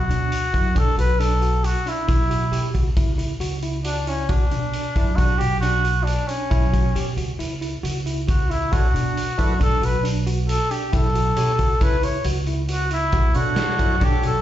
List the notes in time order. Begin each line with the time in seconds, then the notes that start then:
Already playing: F#4
0.09 B2 D4, closed hi-hat
0.32 closed hi-hat
0.53 F#2 E4, kick, closed hi-hat
0.75 B1 D4 A4, kick, closed hi-hat
0.97 B1 F#4 B4, closed hi-hat
1.19 D4 A4, closed hi-hat
1.42 F#4, closed hi-hat
1.64 F#4, closed hi-hat
1.86 D4 E4, closed hi-hat
2.08 B1 E4, kick, closed hi-hat
2.30 F#4, closed hi-hat
2.51 B2 G4, closed hi-hat
2.74 C#2 F#4, kick, closed hi-hat
2.97 C#2 E4, kick, closed hi-hat
3.18 E4, closed hi-hat
3.40 C#2 F#4, closed hi-hat
3.62 E4, closed hi-hat
3.85 D4 F#4, closed hi-hat
4.07 C#4 E4, closed hi-hat
4.29 B1 D4 F#4, kick, closed hi-hat
4.51 B2 D4, closed hi-hat
4.73 closed hi-hat
4.96 F#2 E4, kick, closed hi-hat
5.16 B1 D4 F#4, kick, closed hi-hat
5.38 B1 F#4 G4, closed hi-hat
5.60 D4 F#4, closed hi-hat
5.84 F#4, closed hi-hat
6.03 D4, closed hi-hat
6.27 C#4 D4, closed hi-hat
6.51 B1 E4, kick, closed hi-hat
6.73 F#4, kick, closed hi-hat
6.96 B2 G4, closed hi-hat
7.17 C#2 F#4, closed hi-hat
7.39 C#2 E4, closed hi-hat
7.61 E4, closed hi-hat
7.83 C#2 F#4, closed hi-hat
8.06 E4, closed hi-hat
8.28 F#4, kick, closed hi-hat
8.50 E4, closed hi-hat
8.72 B1 D4 F#4 A4 C#5, kick, closed hi-hat
8.94 B2 D4, closed hi-hat
9.17 closed hi-hat
9.38 F#2 D4 E4 F#4 A4 B4, kick, closed hi-hat
9.60 B1 D4 A4, kick, closed hi-hat
9.82 B1 F#4 B4, closed hi-hat
10.03 D4, closed hi-hat
10.27 F#4, closed hi-hat
10.49 A4, closed hi-hat
10.71 D4 G4, closed hi-hat
10.92 B1 E4 A4, kick, closed hi-hat
11.15 F#4, closed hi-hat
11.36 B2 C#4 E4 G4 A4 C#5, closed hi-hat
11.59 C#2 F#4, kick, closed hi-hat
11.80 C#2 C#4 E4 A4 B4 C#5, kick, closed hi-hat
12.03 E4 C#5, closed hi-hat
12.24 C#2 F#4, closed hi-hat
12.46 E4, closed hi-hat
12.69 F#4, closed hi-hat
12.91 E4, closed hi-hat
13.12 B1 F#4, kick, closed hi-hat
13.34 B2 D4 F#4 A4 C#5, closed hi-hat
13.56 snare, closed hi-hat
13.79 F#2 E4, kick, closed hi-hat
14.00 B1 D4 F#4 A4 C#5, kick, closed hi-hat
14.04 G4
14.23 B1 F#4 A4, closed hi-hat